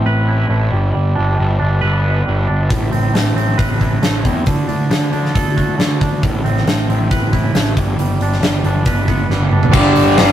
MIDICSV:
0, 0, Header, 1, 5, 480
1, 0, Start_track
1, 0, Tempo, 439883
1, 1026, Time_signature, 4, 2, 24, 8
1, 11262, End_track
2, 0, Start_track
2, 0, Title_t, "Clean electric guitar"
2, 0, Program_c, 0, 27
2, 0, Note_on_c, 0, 45, 69
2, 0, Note_on_c, 0, 57, 66
2, 0, Note_on_c, 0, 60, 59
2, 65, Note_on_c, 0, 71, 65
2, 300, Note_off_c, 0, 45, 0
2, 306, Note_on_c, 0, 64, 58
2, 533, Note_off_c, 0, 57, 0
2, 546, Note_on_c, 0, 57, 59
2, 775, Note_off_c, 0, 57, 0
2, 780, Note_on_c, 0, 55, 57
2, 786, Note_off_c, 0, 60, 0
2, 786, Note_off_c, 0, 64, 0
2, 1003, Note_off_c, 0, 55, 0
2, 1017, Note_on_c, 0, 55, 66
2, 1260, Note_on_c, 0, 62, 59
2, 1487, Note_off_c, 0, 55, 0
2, 1500, Note_on_c, 0, 55, 59
2, 1727, Note_off_c, 0, 62, 0
2, 1741, Note_on_c, 0, 62, 59
2, 1974, Note_off_c, 0, 71, 0
2, 1979, Note_on_c, 0, 71, 64
2, 2225, Note_on_c, 0, 59, 51
2, 2449, Note_off_c, 0, 55, 0
2, 2463, Note_on_c, 0, 55, 56
2, 2691, Note_off_c, 0, 62, 0
2, 2704, Note_on_c, 0, 62, 56
2, 2944, Note_off_c, 0, 71, 0
2, 2945, Note_off_c, 0, 55, 0
2, 2946, Note_off_c, 0, 62, 0
2, 2947, Note_off_c, 0, 59, 0
2, 2950, Note_on_c, 0, 45, 62
2, 3187, Note_on_c, 0, 60, 61
2, 3425, Note_on_c, 0, 57, 60
2, 3657, Note_off_c, 0, 60, 0
2, 3670, Note_on_c, 0, 60, 62
2, 3902, Note_on_c, 0, 71, 65
2, 4150, Note_off_c, 0, 45, 0
2, 4156, Note_on_c, 0, 64, 55
2, 4384, Note_off_c, 0, 57, 0
2, 4388, Note_on_c, 0, 57, 62
2, 4620, Note_off_c, 0, 60, 0
2, 4633, Note_on_c, 0, 60, 62
2, 4867, Note_off_c, 0, 71, 0
2, 4872, Note_off_c, 0, 60, 0
2, 4873, Note_off_c, 0, 57, 0
2, 4873, Note_off_c, 0, 64, 0
2, 4878, Note_on_c, 0, 50, 59
2, 5108, Note_on_c, 0, 62, 64
2, 5347, Note_off_c, 0, 50, 0
2, 5360, Note_on_c, 0, 50, 67
2, 5584, Note_off_c, 0, 62, 0
2, 5597, Note_on_c, 0, 62, 63
2, 5833, Note_on_c, 0, 69, 65
2, 6073, Note_on_c, 0, 66, 54
2, 6291, Note_off_c, 0, 50, 0
2, 6304, Note_on_c, 0, 50, 58
2, 6541, Note_off_c, 0, 62, 0
2, 6554, Note_on_c, 0, 62, 60
2, 6788, Note_off_c, 0, 50, 0
2, 6790, Note_on_c, 0, 45, 71
2, 6792, Note_off_c, 0, 66, 0
2, 6793, Note_off_c, 0, 62, 0
2, 6793, Note_off_c, 0, 69, 0
2, 7030, Note_on_c, 0, 60, 55
2, 7286, Note_on_c, 0, 57, 62
2, 7514, Note_off_c, 0, 60, 0
2, 7527, Note_on_c, 0, 60, 57
2, 7758, Note_on_c, 0, 71, 69
2, 7991, Note_off_c, 0, 45, 0
2, 7992, Note_on_c, 0, 64, 58
2, 8237, Note_off_c, 0, 57, 0
2, 8250, Note_on_c, 0, 57, 61
2, 8472, Note_off_c, 0, 64, 0
2, 8478, Note_off_c, 0, 57, 0
2, 8479, Note_off_c, 0, 60, 0
2, 8482, Note_on_c, 0, 55, 57
2, 8712, Note_off_c, 0, 55, 0
2, 8726, Note_on_c, 0, 55, 70
2, 8972, Note_on_c, 0, 62, 60
2, 9188, Note_off_c, 0, 55, 0
2, 9201, Note_on_c, 0, 55, 59
2, 9430, Note_off_c, 0, 62, 0
2, 9443, Note_on_c, 0, 62, 66
2, 9671, Note_off_c, 0, 71, 0
2, 9676, Note_on_c, 0, 71, 67
2, 9910, Note_on_c, 0, 59, 58
2, 10142, Note_off_c, 0, 55, 0
2, 10155, Note_on_c, 0, 55, 56
2, 10382, Note_off_c, 0, 62, 0
2, 10395, Note_on_c, 0, 62, 60
2, 10626, Note_off_c, 0, 59, 0
2, 10628, Note_off_c, 0, 71, 0
2, 10629, Note_off_c, 0, 55, 0
2, 10629, Note_off_c, 0, 62, 0
2, 11262, End_track
3, 0, Start_track
3, 0, Title_t, "Distorted electric guitar"
3, 0, Program_c, 1, 30
3, 10620, Note_on_c, 1, 43, 82
3, 10624, Note_on_c, 1, 50, 104
3, 10630, Note_on_c, 1, 55, 108
3, 11096, Note_off_c, 1, 43, 0
3, 11098, Note_off_c, 1, 50, 0
3, 11109, Note_on_c, 1, 43, 96
3, 11111, Note_off_c, 1, 55, 0
3, 11111, Note_on_c, 1, 50, 103
3, 11116, Note_on_c, 1, 55, 91
3, 11262, Note_off_c, 1, 43, 0
3, 11262, Note_off_c, 1, 50, 0
3, 11262, Note_off_c, 1, 55, 0
3, 11262, End_track
4, 0, Start_track
4, 0, Title_t, "Picked electric bass"
4, 0, Program_c, 2, 34
4, 66, Note_on_c, 2, 33, 75
4, 482, Note_off_c, 2, 33, 0
4, 537, Note_on_c, 2, 33, 80
4, 749, Note_off_c, 2, 33, 0
4, 783, Note_on_c, 2, 31, 77
4, 992, Note_off_c, 2, 31, 0
4, 1038, Note_on_c, 2, 31, 77
4, 1241, Note_off_c, 2, 31, 0
4, 1283, Note_on_c, 2, 31, 65
4, 1484, Note_off_c, 2, 31, 0
4, 1524, Note_on_c, 2, 31, 78
4, 1724, Note_off_c, 2, 31, 0
4, 1764, Note_on_c, 2, 31, 74
4, 1964, Note_off_c, 2, 31, 0
4, 1992, Note_on_c, 2, 31, 84
4, 2406, Note_off_c, 2, 31, 0
4, 2483, Note_on_c, 2, 31, 75
4, 2685, Note_off_c, 2, 31, 0
4, 2724, Note_on_c, 2, 31, 68
4, 2925, Note_off_c, 2, 31, 0
4, 2949, Note_on_c, 2, 33, 86
4, 3157, Note_off_c, 2, 33, 0
4, 3192, Note_on_c, 2, 33, 66
4, 3399, Note_off_c, 2, 33, 0
4, 3421, Note_on_c, 2, 33, 73
4, 3633, Note_off_c, 2, 33, 0
4, 3649, Note_on_c, 2, 33, 77
4, 3866, Note_off_c, 2, 33, 0
4, 3915, Note_on_c, 2, 33, 76
4, 4329, Note_off_c, 2, 33, 0
4, 4389, Note_on_c, 2, 33, 75
4, 4597, Note_off_c, 2, 33, 0
4, 4638, Note_on_c, 2, 40, 77
4, 4843, Note_off_c, 2, 40, 0
4, 4877, Note_on_c, 2, 38, 81
4, 5082, Note_off_c, 2, 38, 0
4, 5111, Note_on_c, 2, 38, 68
4, 5319, Note_off_c, 2, 38, 0
4, 5348, Note_on_c, 2, 38, 83
4, 5557, Note_off_c, 2, 38, 0
4, 5590, Note_on_c, 2, 38, 78
4, 5799, Note_off_c, 2, 38, 0
4, 5848, Note_on_c, 2, 38, 76
4, 6257, Note_off_c, 2, 38, 0
4, 6305, Note_on_c, 2, 38, 79
4, 6516, Note_off_c, 2, 38, 0
4, 6568, Note_on_c, 2, 38, 73
4, 6769, Note_off_c, 2, 38, 0
4, 6798, Note_on_c, 2, 33, 83
4, 7003, Note_off_c, 2, 33, 0
4, 7019, Note_on_c, 2, 33, 70
4, 7233, Note_off_c, 2, 33, 0
4, 7264, Note_on_c, 2, 33, 78
4, 7475, Note_off_c, 2, 33, 0
4, 7514, Note_on_c, 2, 33, 78
4, 7722, Note_off_c, 2, 33, 0
4, 7766, Note_on_c, 2, 33, 85
4, 8176, Note_off_c, 2, 33, 0
4, 8221, Note_on_c, 2, 33, 77
4, 8434, Note_off_c, 2, 33, 0
4, 8478, Note_on_c, 2, 31, 84
4, 8683, Note_off_c, 2, 31, 0
4, 8708, Note_on_c, 2, 31, 86
4, 8917, Note_off_c, 2, 31, 0
4, 8944, Note_on_c, 2, 31, 67
4, 9155, Note_off_c, 2, 31, 0
4, 9186, Note_on_c, 2, 31, 77
4, 9396, Note_off_c, 2, 31, 0
4, 9425, Note_on_c, 2, 31, 71
4, 9635, Note_off_c, 2, 31, 0
4, 9669, Note_on_c, 2, 31, 85
4, 10084, Note_off_c, 2, 31, 0
4, 10143, Note_on_c, 2, 31, 74
4, 10352, Note_off_c, 2, 31, 0
4, 10378, Note_on_c, 2, 31, 80
4, 10589, Note_off_c, 2, 31, 0
4, 10629, Note_on_c, 2, 31, 100
4, 10826, Note_off_c, 2, 31, 0
4, 10879, Note_on_c, 2, 31, 92
4, 11071, Note_off_c, 2, 31, 0
4, 11118, Note_on_c, 2, 31, 99
4, 11262, Note_off_c, 2, 31, 0
4, 11262, End_track
5, 0, Start_track
5, 0, Title_t, "Drums"
5, 2951, Note_on_c, 9, 36, 91
5, 2953, Note_on_c, 9, 46, 53
5, 3060, Note_off_c, 9, 36, 0
5, 3062, Note_off_c, 9, 46, 0
5, 3194, Note_on_c, 9, 46, 42
5, 3303, Note_off_c, 9, 46, 0
5, 3438, Note_on_c, 9, 46, 57
5, 3442, Note_on_c, 9, 38, 91
5, 3548, Note_off_c, 9, 46, 0
5, 3551, Note_off_c, 9, 38, 0
5, 3685, Note_on_c, 9, 46, 41
5, 3794, Note_off_c, 9, 46, 0
5, 3916, Note_on_c, 9, 46, 61
5, 3917, Note_on_c, 9, 36, 93
5, 4025, Note_off_c, 9, 46, 0
5, 4026, Note_off_c, 9, 36, 0
5, 4157, Note_on_c, 9, 36, 63
5, 4157, Note_on_c, 9, 46, 45
5, 4266, Note_off_c, 9, 36, 0
5, 4266, Note_off_c, 9, 46, 0
5, 4395, Note_on_c, 9, 46, 54
5, 4399, Note_on_c, 9, 38, 90
5, 4504, Note_off_c, 9, 46, 0
5, 4508, Note_off_c, 9, 38, 0
5, 4637, Note_on_c, 9, 36, 77
5, 4637, Note_on_c, 9, 46, 48
5, 4746, Note_off_c, 9, 46, 0
5, 4747, Note_off_c, 9, 36, 0
5, 4869, Note_on_c, 9, 46, 58
5, 4876, Note_on_c, 9, 36, 88
5, 4978, Note_off_c, 9, 46, 0
5, 4985, Note_off_c, 9, 36, 0
5, 5116, Note_on_c, 9, 46, 43
5, 5226, Note_off_c, 9, 46, 0
5, 5357, Note_on_c, 9, 46, 60
5, 5361, Note_on_c, 9, 38, 99
5, 5466, Note_off_c, 9, 46, 0
5, 5470, Note_off_c, 9, 38, 0
5, 5597, Note_on_c, 9, 46, 40
5, 5706, Note_off_c, 9, 46, 0
5, 5731, Note_on_c, 9, 38, 29
5, 5840, Note_off_c, 9, 38, 0
5, 5843, Note_on_c, 9, 36, 100
5, 5848, Note_on_c, 9, 46, 67
5, 5952, Note_off_c, 9, 36, 0
5, 5957, Note_off_c, 9, 46, 0
5, 6085, Note_on_c, 9, 36, 67
5, 6094, Note_on_c, 9, 46, 39
5, 6194, Note_off_c, 9, 36, 0
5, 6203, Note_off_c, 9, 46, 0
5, 6325, Note_on_c, 9, 46, 52
5, 6328, Note_on_c, 9, 38, 96
5, 6434, Note_off_c, 9, 46, 0
5, 6437, Note_off_c, 9, 38, 0
5, 6562, Note_on_c, 9, 36, 77
5, 6563, Note_on_c, 9, 46, 44
5, 6671, Note_off_c, 9, 36, 0
5, 6672, Note_off_c, 9, 46, 0
5, 6801, Note_on_c, 9, 36, 97
5, 6802, Note_on_c, 9, 46, 52
5, 6910, Note_off_c, 9, 36, 0
5, 6911, Note_off_c, 9, 46, 0
5, 7048, Note_on_c, 9, 46, 41
5, 7157, Note_off_c, 9, 46, 0
5, 7169, Note_on_c, 9, 38, 28
5, 7278, Note_off_c, 9, 38, 0
5, 7283, Note_on_c, 9, 46, 61
5, 7286, Note_on_c, 9, 38, 102
5, 7392, Note_off_c, 9, 46, 0
5, 7395, Note_off_c, 9, 38, 0
5, 7528, Note_on_c, 9, 46, 40
5, 7637, Note_off_c, 9, 46, 0
5, 7758, Note_on_c, 9, 46, 60
5, 7760, Note_on_c, 9, 36, 94
5, 7867, Note_off_c, 9, 46, 0
5, 7869, Note_off_c, 9, 36, 0
5, 7997, Note_on_c, 9, 46, 44
5, 7999, Note_on_c, 9, 36, 66
5, 8107, Note_off_c, 9, 46, 0
5, 8109, Note_off_c, 9, 36, 0
5, 8238, Note_on_c, 9, 46, 57
5, 8241, Note_on_c, 9, 38, 87
5, 8347, Note_off_c, 9, 46, 0
5, 8350, Note_off_c, 9, 38, 0
5, 8478, Note_on_c, 9, 36, 95
5, 8478, Note_on_c, 9, 46, 49
5, 8587, Note_off_c, 9, 36, 0
5, 8587, Note_off_c, 9, 46, 0
5, 8718, Note_on_c, 9, 46, 60
5, 8828, Note_off_c, 9, 46, 0
5, 8958, Note_on_c, 9, 46, 44
5, 9067, Note_off_c, 9, 46, 0
5, 9082, Note_on_c, 9, 38, 27
5, 9191, Note_off_c, 9, 38, 0
5, 9197, Note_on_c, 9, 46, 64
5, 9200, Note_on_c, 9, 38, 95
5, 9306, Note_off_c, 9, 46, 0
5, 9310, Note_off_c, 9, 38, 0
5, 9433, Note_on_c, 9, 46, 43
5, 9542, Note_off_c, 9, 46, 0
5, 9663, Note_on_c, 9, 46, 63
5, 9668, Note_on_c, 9, 36, 91
5, 9773, Note_off_c, 9, 46, 0
5, 9777, Note_off_c, 9, 36, 0
5, 9907, Note_on_c, 9, 46, 46
5, 9908, Note_on_c, 9, 36, 65
5, 10016, Note_off_c, 9, 46, 0
5, 10017, Note_off_c, 9, 36, 0
5, 10153, Note_on_c, 9, 38, 42
5, 10262, Note_off_c, 9, 38, 0
5, 10273, Note_on_c, 9, 48, 51
5, 10382, Note_off_c, 9, 48, 0
5, 10382, Note_on_c, 9, 45, 70
5, 10491, Note_off_c, 9, 45, 0
5, 10508, Note_on_c, 9, 43, 75
5, 10617, Note_off_c, 9, 43, 0
5, 10620, Note_on_c, 9, 49, 121
5, 10625, Note_on_c, 9, 36, 119
5, 10729, Note_off_c, 9, 49, 0
5, 10734, Note_off_c, 9, 36, 0
5, 10864, Note_on_c, 9, 46, 59
5, 10973, Note_off_c, 9, 46, 0
5, 11104, Note_on_c, 9, 46, 85
5, 11107, Note_on_c, 9, 38, 122
5, 11213, Note_off_c, 9, 46, 0
5, 11216, Note_off_c, 9, 38, 0
5, 11262, End_track
0, 0, End_of_file